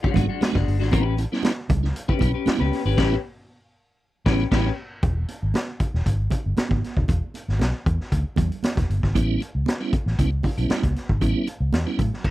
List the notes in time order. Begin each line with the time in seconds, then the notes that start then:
0.03 G#3 D4 F#4, muted fingered electric bass stroke, kick
0.14 G#1 G#3 B3 D4 F#4, kick, closed hi-hat, muted conga, low conga
0.29 G#3 D4 F#4
0.41 G#3 B3 D4 F#4, snare, closed hi-hat, high conga
0.53 G1 G#3 D4 F#4, kick, snare, high conga
0.68 G1, open hi-hat
0.80 G#1 G#3 D4 F#4, snare
0.91 A1 G3 B3 C#4 E4 G4 B4, kick, closed hi-hat, muted conga
1.17 C#4 E4, closed hi-hat, muted conga
1.32 G3 B3 C#4 E4, snare
1.43 snare, closed hi-hat, high conga
1.69 C#2, kick, closed hi-hat, low conga
1.83 C#4 E4, snare
1.96 closed hi-hat
2.08 C#4 E4 G4 B4, muted fingered electric bass stroke, kick
2.19 B1 G3 B3 C#4 E4, kick, closed hi-hat, muted conga
2.34 C#4 G4 B4
2.46 G3 B3 C#4 E4, muted fingered electric bass stroke, snare, closed hi-hat, high conga
2.58 C#2 C#4 G4 B4, high conga
2.73 snare, open hi-hat
2.85 G#1 C#4 E4 G4 B4
2.97 A1 G3 B3 C#4 E4 G4 B4, kick, snare, crash
4.26 A1 G3 B3 C#4 E4 G4 B4, kick, snare
4.51 A1 G3 B3 C#4 E4 G4 B4, kick, snare, crash
5.03 E1, kick, closed hi-hat, muted conga
5.28 closed hi-hat, muted conga
5.43 G#1
5.54 snare, closed hi-hat, high conga
5.80 muted fingered electric bass stroke, kick, closed hi-hat
5.94 E1, snare
6.06 G#1, kick, closed hi-hat
6.30 kick, closed hi-hat, muted conga
6.46 G1
6.57 muted fingered electric bass stroke, snare, closed hi-hat, high conga
6.69 G#1, kick, high conga
6.84 snare, closed hi-hat
6.97 D#1, kick
7.08 E1, kick, closed hi-hat, muted conga
7.34 closed hi-hat, muted conga
7.48 G#1, snare
7.59 B1, snare, closed hi-hat, high conga
7.86 E2, kick, closed hi-hat
8.01 snare
8.12 D2, kick, closed hi-hat
8.36 E2, kick, closed hi-hat, muted conga, low conga
8.52 closed hi-hat
8.63 snare, closed hi-hat, high conga
8.76 E1, kick, snare, closed hi-hat, high conga
8.90 G1, closed hi-hat
9.03 G#1, kick, snare
9.15 A1 G3 B3 C#4 E4, kick, closed hi-hat, muted conga
9.41 closed hi-hat, muted conga
9.55 C#2
9.66 snare, closed hi-hat, high conga
9.80 G3 B3 C#4 E4
9.93 muted fingered electric bass stroke, kick, closed hi-hat
10.06 A1, snare
10.19 C#2 G3 B3 C#4 E4, kick, closed hi-hat
10.43 C#4 E4, kick, open hi-hat, muted conga
10.58 B1 G3 B3 C#4 E4, closed hi-hat
10.70 snare, closed hi-hat, high conga
10.83 C#2, kick, closed hi-hat, high conga
10.96 snare, closed hi-hat
11.09 G#1, kick
11.21 A1 G3 B3 C#4 E4, kick, closed hi-hat, muted conga
11.47 closed hi-hat, muted conga
11.60 C#2
11.73 E2, snare, closed hi-hat, high conga
11.86 G3 B3 C#4 E4
11.99 A2, kick, closed hi-hat, low conga
12.14 snare
12.24 kick, crash